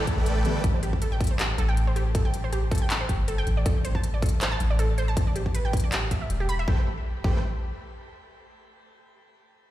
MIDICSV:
0, 0, Header, 1, 6, 480
1, 0, Start_track
1, 0, Key_signature, 0, "minor"
1, 0, Tempo, 377358
1, 814, Time_signature, 4, 2, 24, 8
1, 12350, End_track
2, 0, Start_track
2, 0, Title_t, "Synth arpeggio sound"
2, 0, Program_c, 0, 84
2, 944, Note_on_c, 0, 72, 74
2, 1009, Note_off_c, 0, 72, 0
2, 1054, Note_on_c, 0, 67, 76
2, 1131, Note_off_c, 0, 67, 0
2, 1293, Note_on_c, 0, 69, 97
2, 1340, Note_off_c, 0, 69, 0
2, 1424, Note_on_c, 0, 79, 104
2, 1521, Note_off_c, 0, 79, 0
2, 1664, Note_on_c, 0, 72, 81
2, 1729, Note_off_c, 0, 72, 0
2, 1772, Note_on_c, 0, 67, 84
2, 1850, Note_off_c, 0, 67, 0
2, 2012, Note_on_c, 0, 69, 101
2, 2059, Note_off_c, 0, 69, 0
2, 2143, Note_on_c, 0, 79, 102
2, 2241, Note_off_c, 0, 79, 0
2, 2383, Note_on_c, 0, 72, 76
2, 2448, Note_off_c, 0, 72, 0
2, 2493, Note_on_c, 0, 67, 79
2, 2570, Note_off_c, 0, 67, 0
2, 2732, Note_on_c, 0, 69, 99
2, 2779, Note_off_c, 0, 69, 0
2, 2864, Note_on_c, 0, 79, 101
2, 2961, Note_off_c, 0, 79, 0
2, 3103, Note_on_c, 0, 72, 77
2, 3168, Note_off_c, 0, 72, 0
2, 3213, Note_on_c, 0, 67, 82
2, 3291, Note_off_c, 0, 67, 0
2, 3453, Note_on_c, 0, 69, 103
2, 3500, Note_off_c, 0, 69, 0
2, 3584, Note_on_c, 0, 79, 104
2, 3681, Note_off_c, 0, 79, 0
2, 3824, Note_on_c, 0, 72, 77
2, 3889, Note_off_c, 0, 72, 0
2, 3933, Note_on_c, 0, 67, 75
2, 4011, Note_off_c, 0, 67, 0
2, 4173, Note_on_c, 0, 69, 99
2, 4219, Note_off_c, 0, 69, 0
2, 4303, Note_on_c, 0, 79, 100
2, 4400, Note_off_c, 0, 79, 0
2, 4543, Note_on_c, 0, 74, 78
2, 4608, Note_off_c, 0, 74, 0
2, 4652, Note_on_c, 0, 69, 85
2, 4730, Note_off_c, 0, 69, 0
2, 4892, Note_on_c, 0, 72, 96
2, 4939, Note_off_c, 0, 72, 0
2, 5023, Note_on_c, 0, 81, 101
2, 5121, Note_off_c, 0, 81, 0
2, 5264, Note_on_c, 0, 74, 78
2, 5329, Note_off_c, 0, 74, 0
2, 5373, Note_on_c, 0, 69, 76
2, 5451, Note_off_c, 0, 69, 0
2, 5613, Note_on_c, 0, 72, 102
2, 5660, Note_off_c, 0, 72, 0
2, 5744, Note_on_c, 0, 81, 104
2, 5841, Note_off_c, 0, 81, 0
2, 5983, Note_on_c, 0, 74, 76
2, 6049, Note_off_c, 0, 74, 0
2, 6093, Note_on_c, 0, 69, 82
2, 6171, Note_off_c, 0, 69, 0
2, 6333, Note_on_c, 0, 72, 104
2, 6380, Note_off_c, 0, 72, 0
2, 6464, Note_on_c, 0, 81, 104
2, 6561, Note_off_c, 0, 81, 0
2, 6704, Note_on_c, 0, 74, 75
2, 6769, Note_off_c, 0, 74, 0
2, 6814, Note_on_c, 0, 67, 73
2, 6891, Note_off_c, 0, 67, 0
2, 7053, Note_on_c, 0, 71, 98
2, 7100, Note_off_c, 0, 71, 0
2, 7185, Note_on_c, 0, 79, 102
2, 7282, Note_off_c, 0, 79, 0
2, 7425, Note_on_c, 0, 74, 80
2, 7489, Note_off_c, 0, 74, 0
2, 7534, Note_on_c, 0, 67, 85
2, 7611, Note_off_c, 0, 67, 0
2, 7774, Note_on_c, 0, 76, 79
2, 7851, Note_off_c, 0, 76, 0
2, 7905, Note_on_c, 0, 76, 77
2, 7943, Note_off_c, 0, 76, 0
2, 8144, Note_on_c, 0, 67, 78
2, 8183, Note_off_c, 0, 67, 0
2, 8253, Note_on_c, 0, 83, 104
2, 8331, Note_off_c, 0, 83, 0
2, 8385, Note_on_c, 0, 76, 100
2, 8482, Note_off_c, 0, 76, 0
2, 8494, Note_on_c, 0, 67, 91
2, 8636, Note_off_c, 0, 67, 0
2, 9214, Note_on_c, 0, 67, 93
2, 9437, Note_off_c, 0, 67, 0
2, 12350, End_track
3, 0, Start_track
3, 0, Title_t, "Supersaw synth"
3, 0, Program_c, 1, 81
3, 92, Note_on_c, 1, 57, 84
3, 92, Note_on_c, 1, 71, 76
3, 93, Note_on_c, 1, 69, 77
3, 93, Note_on_c, 1, 74, 77
3, 93, Note_on_c, 1, 81, 89
3, 192, Note_off_c, 1, 57, 0
3, 192, Note_off_c, 1, 69, 0
3, 192, Note_off_c, 1, 71, 0
3, 192, Note_off_c, 1, 74, 0
3, 192, Note_off_c, 1, 81, 0
3, 223, Note_on_c, 1, 57, 80
3, 223, Note_on_c, 1, 69, 74
3, 223, Note_on_c, 1, 71, 74
3, 223, Note_on_c, 1, 74, 76
3, 223, Note_on_c, 1, 79, 87
3, 786, Note_off_c, 1, 57, 0
3, 786, Note_off_c, 1, 69, 0
3, 786, Note_off_c, 1, 71, 0
3, 786, Note_off_c, 1, 74, 0
3, 786, Note_off_c, 1, 79, 0
3, 8492, Note_on_c, 1, 57, 84
3, 8492, Note_on_c, 1, 69, 82
3, 8492, Note_on_c, 1, 72, 79
3, 8492, Note_on_c, 1, 79, 99
3, 8493, Note_on_c, 1, 71, 79
3, 8635, Note_off_c, 1, 57, 0
3, 8635, Note_off_c, 1, 69, 0
3, 8635, Note_off_c, 1, 71, 0
3, 8635, Note_off_c, 1, 72, 0
3, 8635, Note_off_c, 1, 79, 0
3, 9212, Note_on_c, 1, 69, 80
3, 9212, Note_on_c, 1, 71, 80
3, 9213, Note_on_c, 1, 57, 89
3, 9213, Note_on_c, 1, 72, 78
3, 9213, Note_on_c, 1, 79, 96
3, 9396, Note_off_c, 1, 57, 0
3, 9396, Note_off_c, 1, 69, 0
3, 9396, Note_off_c, 1, 71, 0
3, 9396, Note_off_c, 1, 72, 0
3, 9396, Note_off_c, 1, 79, 0
3, 12350, End_track
4, 0, Start_track
4, 0, Title_t, "Synth pluck"
4, 0, Program_c, 2, 84
4, 0, Note_on_c, 2, 50, 90
4, 0, Note_on_c, 2, 52, 81
4, 0, Note_on_c, 2, 55, 85
4, 0, Note_on_c, 2, 59, 82
4, 0, Note_on_c, 2, 64, 97
4, 534, Note_off_c, 2, 50, 0
4, 541, Note_off_c, 2, 52, 0
4, 547, Note_off_c, 2, 55, 0
4, 553, Note_off_c, 2, 59, 0
4, 560, Note_off_c, 2, 64, 0
4, 560, Note_on_c, 2, 50, 77
4, 567, Note_on_c, 2, 52, 71
4, 573, Note_on_c, 2, 55, 71
4, 579, Note_on_c, 2, 59, 69
4, 586, Note_on_c, 2, 67, 83
4, 781, Note_off_c, 2, 50, 0
4, 784, Note_off_c, 2, 52, 0
4, 787, Note_off_c, 2, 55, 0
4, 790, Note_off_c, 2, 59, 0
4, 793, Note_off_c, 2, 67, 0
4, 12350, End_track
5, 0, Start_track
5, 0, Title_t, "808-style bass"
5, 0, Program_c, 3, 38
5, 0, Note_on_c, 3, 33, 94
5, 216, Note_off_c, 3, 33, 0
5, 224, Note_on_c, 3, 33, 105
5, 559, Note_off_c, 3, 33, 0
5, 814, Note_on_c, 3, 33, 101
5, 2000, Note_off_c, 3, 33, 0
5, 2013, Note_on_c, 3, 33, 91
5, 3925, Note_off_c, 3, 33, 0
5, 3933, Note_on_c, 3, 31, 82
5, 4399, Note_off_c, 3, 31, 0
5, 4413, Note_on_c, 3, 33, 77
5, 4636, Note_off_c, 3, 33, 0
5, 4653, Note_on_c, 3, 33, 104
5, 5839, Note_off_c, 3, 33, 0
5, 5853, Note_on_c, 3, 33, 93
5, 6559, Note_off_c, 3, 33, 0
5, 6574, Note_on_c, 3, 33, 96
5, 8000, Note_off_c, 3, 33, 0
5, 8014, Note_on_c, 3, 28, 98
5, 8480, Note_off_c, 3, 28, 0
5, 8494, Note_on_c, 3, 33, 101
5, 8635, Note_off_c, 3, 33, 0
5, 9213, Note_on_c, 3, 33, 97
5, 9436, Note_off_c, 3, 33, 0
5, 12350, End_track
6, 0, Start_track
6, 0, Title_t, "Drums"
6, 93, Note_on_c, 9, 36, 62
6, 93, Note_on_c, 9, 42, 64
6, 220, Note_off_c, 9, 42, 0
6, 221, Note_off_c, 9, 36, 0
6, 334, Note_on_c, 9, 42, 69
6, 461, Note_off_c, 9, 42, 0
6, 573, Note_on_c, 9, 42, 54
6, 700, Note_off_c, 9, 42, 0
6, 813, Note_on_c, 9, 36, 120
6, 813, Note_on_c, 9, 42, 74
6, 940, Note_off_c, 9, 42, 0
6, 941, Note_off_c, 9, 36, 0
6, 1053, Note_on_c, 9, 42, 62
6, 1181, Note_off_c, 9, 42, 0
6, 1184, Note_on_c, 9, 36, 58
6, 1293, Note_on_c, 9, 42, 78
6, 1311, Note_off_c, 9, 36, 0
6, 1421, Note_off_c, 9, 42, 0
6, 1533, Note_on_c, 9, 36, 103
6, 1534, Note_on_c, 9, 42, 44
6, 1577, Note_off_c, 9, 42, 0
6, 1577, Note_on_c, 9, 42, 59
6, 1614, Note_off_c, 9, 42, 0
6, 1614, Note_on_c, 9, 42, 74
6, 1660, Note_off_c, 9, 36, 0
6, 1741, Note_off_c, 9, 42, 0
6, 1774, Note_on_c, 9, 39, 123
6, 1774, Note_on_c, 9, 42, 79
6, 1902, Note_off_c, 9, 39, 0
6, 1902, Note_off_c, 9, 42, 0
6, 2014, Note_on_c, 9, 42, 63
6, 2141, Note_off_c, 9, 42, 0
6, 2254, Note_on_c, 9, 42, 72
6, 2381, Note_off_c, 9, 42, 0
6, 2494, Note_on_c, 9, 42, 57
6, 2621, Note_off_c, 9, 42, 0
6, 2733, Note_on_c, 9, 36, 114
6, 2733, Note_on_c, 9, 42, 79
6, 2860, Note_off_c, 9, 36, 0
6, 2860, Note_off_c, 9, 42, 0
6, 2972, Note_on_c, 9, 42, 66
6, 3100, Note_off_c, 9, 42, 0
6, 3213, Note_on_c, 9, 42, 81
6, 3340, Note_off_c, 9, 42, 0
6, 3453, Note_on_c, 9, 36, 104
6, 3453, Note_on_c, 9, 42, 47
6, 3496, Note_off_c, 9, 42, 0
6, 3496, Note_on_c, 9, 42, 62
6, 3533, Note_off_c, 9, 42, 0
6, 3533, Note_on_c, 9, 42, 76
6, 3580, Note_off_c, 9, 36, 0
6, 3660, Note_off_c, 9, 42, 0
6, 3693, Note_on_c, 9, 39, 113
6, 3693, Note_on_c, 9, 42, 81
6, 3820, Note_off_c, 9, 39, 0
6, 3820, Note_off_c, 9, 42, 0
6, 3932, Note_on_c, 9, 42, 69
6, 3933, Note_on_c, 9, 36, 57
6, 4060, Note_off_c, 9, 36, 0
6, 4060, Note_off_c, 9, 42, 0
6, 4172, Note_on_c, 9, 42, 76
6, 4299, Note_off_c, 9, 42, 0
6, 4412, Note_on_c, 9, 42, 58
6, 4540, Note_off_c, 9, 42, 0
6, 4652, Note_on_c, 9, 42, 81
6, 4653, Note_on_c, 9, 36, 115
6, 4779, Note_off_c, 9, 42, 0
6, 4780, Note_off_c, 9, 36, 0
6, 4893, Note_on_c, 9, 42, 70
6, 5020, Note_off_c, 9, 42, 0
6, 5024, Note_on_c, 9, 36, 55
6, 5133, Note_on_c, 9, 42, 83
6, 5151, Note_off_c, 9, 36, 0
6, 5261, Note_off_c, 9, 42, 0
6, 5373, Note_on_c, 9, 36, 101
6, 5374, Note_on_c, 9, 42, 51
6, 5416, Note_off_c, 9, 42, 0
6, 5416, Note_on_c, 9, 42, 64
6, 5453, Note_off_c, 9, 42, 0
6, 5453, Note_on_c, 9, 42, 79
6, 5500, Note_off_c, 9, 36, 0
6, 5581, Note_off_c, 9, 42, 0
6, 5614, Note_on_c, 9, 39, 114
6, 5614, Note_on_c, 9, 42, 85
6, 5741, Note_off_c, 9, 39, 0
6, 5741, Note_off_c, 9, 42, 0
6, 5853, Note_on_c, 9, 42, 69
6, 5981, Note_off_c, 9, 42, 0
6, 6094, Note_on_c, 9, 42, 79
6, 6221, Note_off_c, 9, 42, 0
6, 6333, Note_on_c, 9, 42, 62
6, 6460, Note_off_c, 9, 42, 0
6, 6573, Note_on_c, 9, 36, 117
6, 6573, Note_on_c, 9, 42, 81
6, 6700, Note_off_c, 9, 36, 0
6, 6700, Note_off_c, 9, 42, 0
6, 6814, Note_on_c, 9, 42, 68
6, 6941, Note_off_c, 9, 42, 0
6, 6944, Note_on_c, 9, 36, 56
6, 7054, Note_on_c, 9, 42, 82
6, 7071, Note_off_c, 9, 36, 0
6, 7181, Note_off_c, 9, 42, 0
6, 7293, Note_on_c, 9, 36, 102
6, 7294, Note_on_c, 9, 42, 50
6, 7338, Note_off_c, 9, 42, 0
6, 7338, Note_on_c, 9, 42, 65
6, 7373, Note_off_c, 9, 42, 0
6, 7373, Note_on_c, 9, 42, 80
6, 7420, Note_off_c, 9, 36, 0
6, 7501, Note_off_c, 9, 42, 0
6, 7533, Note_on_c, 9, 39, 114
6, 7533, Note_on_c, 9, 42, 85
6, 7661, Note_off_c, 9, 39, 0
6, 7661, Note_off_c, 9, 42, 0
6, 7773, Note_on_c, 9, 36, 58
6, 7773, Note_on_c, 9, 42, 70
6, 7901, Note_off_c, 9, 36, 0
6, 7901, Note_off_c, 9, 42, 0
6, 8013, Note_on_c, 9, 42, 81
6, 8141, Note_off_c, 9, 42, 0
6, 8254, Note_on_c, 9, 42, 63
6, 8381, Note_off_c, 9, 42, 0
6, 8494, Note_on_c, 9, 36, 111
6, 8621, Note_off_c, 9, 36, 0
6, 9213, Note_on_c, 9, 36, 110
6, 9341, Note_off_c, 9, 36, 0
6, 12350, End_track
0, 0, End_of_file